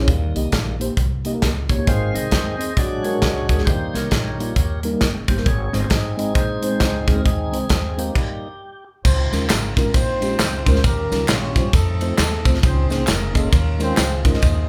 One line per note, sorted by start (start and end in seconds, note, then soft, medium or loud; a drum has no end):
0.00 0.08 G#4 medium
0.00 0.09 C#5 medium
0.08 0.31 D#2 loud
0.08 0.76 D#3 medium
0.08 0.77 G3 soft
0.08 0.77 A#3 medium
0.08 kick loud
0.08 closed hi-hat medium
0.35 0.50 C2 medium
0.35 0.47 A#3 medium
0.35 0.47 D#4 medium
0.35 0.48 G4 medium
0.35 0.48 D#5 medium
0.35 closed hi-hat medium
0.52 0.91 A#1 medium
0.52 kick medium
0.52 snare loud
0.52 closed hi-hat medium
0.80 0.92 A#3 medium
0.80 0.92 D#4 medium
0.80 0.93 G4 medium
0.80 0.93 C5 medium
0.80 closed hi-hat medium
0.97 1.36 C2 medium
0.97 kick loud
0.97 closed hi-hat medium
1.25 1.31 A#3 medium
1.25 1.31 D#4 medium
1.25 1.32 G4 medium
1.25 1.32 D#5 medium
1.25 closed hi-hat medium
1.33 1.47 A#3 medium
1.33 1.48 D#4 medium
1.33 1.48 G4 medium
1.33 1.48 A#4 medium
1.42 1.81 C#2 medium
1.42 kick medium
1.42 snare loud
1.42 closed hi-hat medium
1.69 1.76 A#3 medium
1.69 1.76 D#4 medium
1.69 1.76 G4 medium
1.69 1.88 C#5 medium
1.69 1.77 C#5 medium
1.69 kick medium
1.69 closed hi-hat medium
1.78 1.87 A#3 medium
1.78 1.87 D#4 medium
1.78 1.88 G4 medium
1.78 1.88 C#5 medium
1.87 2.11 G#1 loud
1.87 2.55 G#2 medium
1.87 2.56 D#3 medium
1.87 2.56 G#3 soft
1.87 2.57 C4 medium
1.87 2.15 G#4 medium
1.87 2.15 C5 medium
1.87 2.16 F5 loud
1.87 kick loud
1.87 closed hi-hat medium
2.13 2.30 C2 medium
2.13 2.26 C4 medium
2.13 2.26 D#4 medium
2.13 2.27 G#4 medium
2.13 2.74 G#4 medium
2.13 2.74 C5 medium
2.13 2.79 D#5 medium
2.13 2.27 D#5 medium
2.13 closed hi-hat medium
2.31 2.70 D#2 medium
2.31 kick medium
2.31 snare loud
2.31 closed hi-hat medium
2.58 2.71 C4 medium
2.58 2.71 D#4 medium
2.58 2.72 G#4 medium
2.58 2.72 D#5 medium
2.58 closed hi-hat medium
2.77 3.15 A#1 medium
2.77 3.45 A#2 medium
2.77 3.63 F#3 medium
2.77 3.63 G#3 soft
2.77 3.64 D4 medium
2.77 3.04 F#4 medium
2.77 3.04 G#4 medium
2.77 3.05 D5 medium
2.77 kick loud
2.77 closed hi-hat medium
3.03 3.10 G#3 medium
3.03 3.10 D4 medium
3.03 3.11 F#4 medium
3.03 3.63 F#4 medium
3.03 3.63 G#4 medium
3.03 3.11 A#4 medium
3.03 3.47 C#5 medium
3.03 closed hi-hat medium
3.12 3.27 G#3 medium
3.12 3.27 D4 medium
3.12 3.27 F#4 medium
3.12 3.28 A#4 medium
3.22 3.46 C#2 medium
3.22 kick medium
3.22 snare medium
3.22 closed hi-hat medium
3.48 3.64 D2 medium
3.48 3.55 G#3 medium
3.48 3.56 D4 medium
3.48 3.56 F#4 medium
3.48 3.56 A#4 medium
3.48 3.67 C#5 medium
3.48 kick medium
3.48 closed hi-hat medium
3.58 3.67 G#3 medium
3.58 3.67 D4 medium
3.58 3.67 F#4 medium
3.58 3.68 G#4 medium
3.58 snare soft
3.65 3.90 D#2 medium
3.65 4.35 D#3 medium
3.65 3.99 G3 medium
3.65 4.00 A#3 soft
3.65 4.39 D#4 medium
3.65 3.94 G4 medium
3.65 3.94 C5 medium
3.65 kick loud
3.65 closed hi-hat medium
3.94 4.09 C2 medium
3.94 4.06 G3 medium
3.94 4.07 A#3 medium
3.94 4.07 D#4 medium
3.94 4.81 G4 medium
3.94 4.81 A#4 medium
3.94 4.07 A#4 medium
3.94 4.80 C#5 medium
3.94 snare soft
3.94 closed hi-hat medium
4.11 4.50 A#1 medium
4.11 kick medium
4.11 snare loud
4.11 closed hi-hat medium
4.38 4.51 G3 medium
4.38 4.55 G3 soft
4.38 4.51 A#3 medium
4.38 4.55 A#3 soft
4.38 4.52 D#4 medium
4.38 4.55 D#4 soft
4.38 4.52 F4 medium
4.38 closed hi-hat medium
4.56 4.95 D#2 medium
4.56 kick medium
4.56 closed hi-hat medium
4.83 4.90 G3 medium
4.83 4.90 A#3 medium
4.83 4.90 D#4 medium
4.83 4.90 A#4 medium
4.83 closed hi-hat medium
4.92 5.06 G3 medium
4.92 5.07 A#3 medium
4.92 5.07 D#4 medium
4.92 5.07 A#4 medium
5.01 5.25 F#1 medium
5.01 kick medium
5.01 snare loud
5.01 closed hi-hat medium
5.28 5.43 G1 medium
5.28 5.35 G3 medium
5.28 5.35 A#3 medium
5.28 5.35 D#4 medium
5.28 5.36 G4 medium
5.28 5.47 C5 medium
5.28 kick medium
5.28 closed hi-hat medium
5.37 5.46 G3 medium
5.37 5.46 A#3 medium
5.37 5.47 D#4 medium
5.37 5.47 A#4 medium
5.37 snare soft
5.46 5.70 G#1 medium
5.46 6.15 G#2 medium
5.46 5.88 G#4 medium
5.46 5.74 C#5 loud
5.46 kick loud
5.46 closed hi-hat medium
5.72 5.88 G1 medium
5.72 5.85 G#3 medium
5.72 5.85 C4 medium
5.72 5.86 D#4 medium
5.72 5.86 C5 medium
5.72 5.82 D#5 loud
5.72 snare soft
5.72 closed hi-hat medium
5.80 5.90 C5 medium
5.89 6.29 G#1 medium
5.89 6.16 C4 medium
5.89 6.18 D#4 medium
5.89 6.34 G#4 medium
5.89 kick medium
5.89 snare loud
5.89 closed hi-hat medium
6.17 6.30 G#3 medium
6.17 7.21 G#3 soft
6.17 6.30 C4 medium
6.17 7.21 C4 soft
6.17 6.30 D#4 medium
6.17 6.34 D#4 medium
6.17 6.31 D#5 medium
6.17 closed hi-hat medium
6.35 6.74 A#1 medium
6.35 7.21 D#4 medium
6.35 7.21 G#4 medium
6.35 7.10 C5 medium
6.35 kick loud
6.35 closed hi-hat medium
6.62 6.69 G#3 medium
6.62 6.69 C4 medium
6.62 6.69 D#4 medium
6.62 6.70 C5 medium
6.62 closed hi-hat medium
6.71 6.85 G#3 medium
6.71 6.86 C4 medium
6.71 6.86 D#4 medium
6.71 6.86 C5 medium
6.80 7.04 C#2 medium
6.80 kick medium
6.80 snare loud
6.80 closed hi-hat medium
7.07 7.23 D2 medium
7.07 7.14 G#3 medium
7.07 7.14 C4 medium
7.07 7.14 D#4 medium
7.07 7.15 G#4 medium
7.07 7.24 A#4 medium
7.07 kick loud
7.07 closed hi-hat medium
7.15 7.25 G#3 medium
7.15 7.25 C4 medium
7.15 7.25 D#4 medium
7.15 7.26 C5 medium
7.24 7.54 D#2 medium
7.24 7.94 D#3 medium
7.24 7.58 G#3 medium
7.24 8.12 C4 medium
7.24 7.59 D#4 medium
7.24 8.00 G#4 medium
7.24 kick loud
7.24 closed hi-hat medium
7.52 7.68 C2 medium
7.52 7.65 G#3 medium
7.52 7.65 C4 medium
7.52 7.65 D#4 medium
7.52 7.66 C5 medium
7.52 closed hi-hat medium
7.69 8.09 D#2 medium
7.69 kick medium
7.69 snare loud
7.69 closed hi-hat medium
7.97 8.10 G#3 medium
7.97 8.14 A#3 soft
7.97 8.10 C4 medium
7.97 8.10 D#4 medium
7.97 8.15 D#4 soft
7.97 8.84 G4 medium
7.97 8.11 C5 medium
7.97 closed hi-hat medium
8.15 8.48 G3 soft
8.15 8.48 A#3 soft
8.15 8.49 D#4 medium
8.15 kick medium
8.15 crash medium
9.05 9.28 C#2 loud
9.05 9.73 C#3 medium
9.05 9.47 C4 medium
9.05 9.91 D#4 medium
9.05 9.91 F4 medium
9.05 9.47 C5 medium
9.05 kick loud
9.05 crash loud
9.05 tambourine medium
9.32 9.48 D#2 loud
9.32 9.44 G#3 medium
9.32 9.45 C#4 medium
9.32 9.45 D#4 medium
9.32 9.45 F4 medium
9.32 9.45 A#4 medium
9.32 snare soft
9.32 ride medium
9.32 tambourine medium
9.49 9.88 G#1 medium
9.49 9.75 A#3 medium
9.49 9.75 A#4 medium
9.49 snare loud
9.49 clap loud
9.49 ride medium
9.49 tambourine loud
9.77 9.89 G#3 medium
9.77 9.93 A#3 medium
9.77 9.89 C#4 medium
9.77 9.89 D#4 medium
9.77 9.90 F4 medium
9.77 9.93 A#4 medium
9.77 9.90 A#4 medium
9.77 kick medium
9.77 ride medium
9.77 tambourine medium
9.94 10.33 A#1 loud
9.94 10.80 C4 loud
9.94 10.80 D#4 medium
9.94 10.80 F4 medium
9.94 10.80 C5 loud
9.94 kick loud
9.94 ride medium
9.94 tambourine medium
10.21 10.34 G#3 medium
10.21 10.34 C#4 medium
10.21 10.34 D#4 medium
10.21 10.35 F4 medium
10.21 10.35 G4 medium
10.21 ride medium
10.21 tambourine medium
10.39 10.63 C#2 medium
10.39 snare loud
10.39 clap loud
10.39 ride medium
10.39 tambourine loud
10.66 10.82 D2 loud
10.66 10.79 G#3 medium
10.66 10.79 C#4 medium
10.66 10.79 D#4 medium
10.66 10.80 F4 medium
10.66 10.80 A#4 loud
10.66 kick loud
10.66 ride medium
10.66 tambourine medium
10.75 snare soft
10.84 11.08 D#2 loud
10.84 11.53 D#3 medium
10.84 11.29 A#3 medium
10.84 11.31 C#4 medium
10.84 11.29 G4 medium
10.84 11.29 A#4 medium
10.84 kick loud
10.84 ride medium
10.84 tambourine medium
11.11 11.27 C#2 medium
11.11 11.23 G3 medium
11.11 11.24 C#4 medium
11.11 11.24 D#4 medium
11.11 11.24 F4 medium
11.11 11.25 A#4 medium
11.11 snare soft
11.11 ride medium
11.11 tambourine medium
11.28 11.68 A#1 medium
11.28 11.75 C#4 medium
11.28 11.71 F4 medium
11.28 11.71 G4 medium
11.28 11.75 C#5 medium
11.28 snare loud
11.28 clap loud
11.28 ride medium
11.28 tambourine loud
11.56 11.68 G3 medium
11.56 11.69 C#4 medium
11.56 11.69 D#4 medium
11.56 11.69 F4 medium
11.56 11.69 C5 medium
11.56 kick medium
11.56 ride medium
11.56 tambourine medium
11.73 12.12 F2 loud
11.73 12.18 A3 medium
11.73 12.17 C4 medium
11.73 12.17 D#4 medium
11.73 12.18 A4 loud
11.73 kick loud
11.73 ride medium
11.73 tambourine medium
12.00 12.13 A3 medium
12.00 12.13 C4 medium
12.00 12.13 D#4 medium
12.00 12.14 F4 medium
12.00 12.14 C5 medium
12.00 ride medium
12.00 tambourine medium
12.18 12.42 D#2 medium
12.18 12.52 A3 medium
12.18 12.60 C4 medium
12.18 12.60 D#4 medium
12.18 12.52 A4 medium
12.18 snare loud
12.18 clap loud
12.18 ride medium
12.18 tambourine loud
12.45 12.61 C#2 medium
12.45 12.58 A3 medium
12.45 12.58 C4 medium
12.45 12.58 D#4 medium
12.45 12.58 F4 medium
12.45 12.58 C5 medium
12.45 kick loud
12.45 ride medium
12.45 tambourine medium
12.54 snare soft
12.62 12.87 C#2 loud
12.62 13.31 C#3 medium
12.62 12.89 C4 medium
12.62 13.49 D#4 medium
12.62 13.49 G#4 medium
12.62 12.89 C5 loud
12.62 kick loud
12.62 ride medium
12.62 tambourine medium
12.89 13.06 C2 medium
12.89 13.02 A#3 medium
12.89 13.07 C4 medium
12.89 13.02 C#4 medium
12.89 13.03 D#4 medium
12.89 13.03 G#4 medium
12.89 13.03 C5 medium
12.89 13.07 C5 medium
12.89 snare soft
12.89 ride medium
12.89 tambourine medium
13.07 13.46 F1 medium
13.07 13.35 A#3 medium
13.07 13.35 A#4 loud
13.07 snare loud
13.07 clap loud
13.07 ride medium
13.07 tambourine loud
13.34 13.47 A#3 medium
13.34 13.77 A#3 medium
13.34 13.47 C#4 medium
13.34 14.21 C#4 medium
13.34 13.47 D#4 medium
13.34 13.80 F4 medium
13.34 13.48 G#4 medium
13.34 13.77 A#4 medium
13.34 13.48 D#5 medium
13.34 kick medium
13.34 ride medium
13.34 tambourine medium
13.52 13.91 D#2 loud
13.52 14.21 D#3 medium
13.52 kick loud
13.52 ride medium
13.52 tambourine medium
13.79 13.92 G#3 medium
13.79 14.23 C4 loud
13.79 13.92 C#4 medium
13.79 13.92 D#4 medium
13.79 13.93 F4 medium
13.79 14.39 F4 medium
13.79 14.25 G#4 medium
13.79 13.93 A#4 medium
13.79 14.23 C5 loud
13.79 ride medium
13.79 tambourine medium
13.97 14.21 C#2 loud
13.97 snare loud
13.97 clap loud
13.97 ride medium
13.97 tambourine loud
14.24 14.40 D2 loud
14.24 14.37 G#3 medium
14.24 14.37 C#4 medium
14.24 14.37 D#4 medium
14.24 14.69 D#4 loud
14.24 14.37 F4 medium
14.24 14.69 G#4 medium
14.24 14.38 A#4 medium
14.24 14.69 C5 medium
14.24 14.69 D#5 loud
14.24 kick loud
14.24 ride medium
14.24 tambourine medium
14.34 snare soft
14.42 14.66 D#2 loud
14.42 14.69 D#3 medium
14.42 kick loud
14.42 ride medium
14.42 tambourine medium